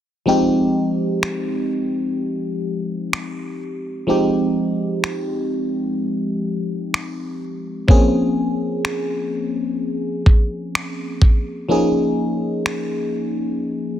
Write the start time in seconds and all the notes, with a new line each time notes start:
0.26 F3 G#3 C4 D#4 G4
1.23 finger snap
3.13 finger snap
4.07 F3 G#3 C4 D#4 G4
5.04 finger snap
6.94 finger snap
7.88 F3 A#3 C4 C#4 G#4, kick
8.85 finger snap
10.26 kick
10.75 finger snap
11.22 kick
11.69 F3 A#3 C#4 D#4 G#4
12.66 finger snap